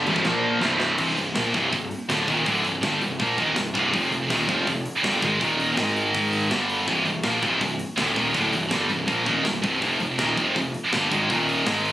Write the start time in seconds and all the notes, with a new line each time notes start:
0.06 C1 C2 G2 C3, ride
0.16 kick
0.25 A#1 A#2 F3 A#3, kick, snare
0.61 C1 C2 G2 C3, snare
0.80 snare
0.98 C1 C2 G2 C3, kick, crash
1.16 C1 C2 G2, open hi-hat
1.34 A#1 A#2 F3 A#3, snare, open hi-hat
1.53 C1 C2 G2 C3, kick, open hi-hat
1.72 C1 C2 G2, kick, open hi-hat
1.91 open hi-hat
2.09 D1 D2 A2 D3, snare, open hi-hat
2.28 D#1 D#2 A#2 D#3, kick, open hi-hat
2.46 D1 D2 A2 D3, kick, open hi-hat
2.64 C1 C2 G2, open hi-hat
2.83 G1 G2 D3 G3, snare, open hi-hat
3.01 C1 C2 G2, open hi-hat
3.19 A#1 A#2 F3 A#3, kick, open hi-hat
3.38 D#1 D#2 A#2 D#3, kick, open hi-hat
3.56 C1 C2 G2, snare, open hi-hat
3.74 C1 C2 G2 C3, kick, open hi-hat
3.92 F1 F2 C3 F3, kick, open hi-hat
4.10 F1 F2 C3, open hi-hat
4.29 D#1 D#2 A#2 D#3, snare, open hi-hat
4.48 F1 F2 C3 F3, kick, open hi-hat
4.67 F1 F2 C3, kick, open hi-hat
4.86 open hi-hat
5.03 G1 G2 D3 G3, snare, open hi-hat
5.22 G#1 G#2 D#3 G#3, kick, open hi-hat
5.41 D#1 D#2 A#2 D#3, kick, open hi-hat
5.60 open hi-hat
5.77 G#1 G#2 D#3 G#3, snare, open hi-hat
5.96 open hi-hat
6.15 kick, open hi-hat
6.33 open hi-hat
6.50 G1 G2 D3 G3, snare, open hi-hat
6.70 open hi-hat
6.87 C1 C2 G2 C3, kick, open hi-hat
7.05 C1 C2 G2, open hi-hat
7.23 A#1 A#2 F3 A#3, snare, open hi-hat
7.42 C1 C2 G2 C3, kick, open hi-hat
7.61 C1 C2 G2, kick, open hi-hat
7.79 open hi-hat
7.97 D1 D2 A2 D3, snare, open hi-hat
8.15 D#1 D#2 A#2 D#3, kick, open hi-hat
8.34 D1 D2 A2 D3, kick, open hi-hat
8.53 C1 C2 G2, open hi-hat
8.71 G1 G2 D3 G3, snare, open hi-hat
8.89 C1 C2 G2, open hi-hat
9.07 A#1 A#2 F3 A#3, kick, open hi-hat
9.25 D#1 D#2 A#2 D#3, kick, open hi-hat
9.45 C1 C2 G2, snare, open hi-hat
9.62 C1 C2 G2 C3, kick, open hi-hat
9.81 F1 F2 C3 F3, kick, open hi-hat
9.99 F1 F2 C3, open hi-hat
10.18 D#1 D#2 A#2 D#3, snare, open hi-hat
10.37 F1 F2 C3 F3, kick, open hi-hat
10.56 F1 F2 C3, kick, open hi-hat
10.74 open hi-hat
10.93 G1 G2 D3 G3, snare, open hi-hat
11.10 G#1 G#2 D#3 G#3, kick, open hi-hat
11.30 D#1 D#2 A#2 D#3, kick, open hi-hat
11.49 open hi-hat
11.66 G#1 G#2 D#3 G#3, snare, open hi-hat
11.85 open hi-hat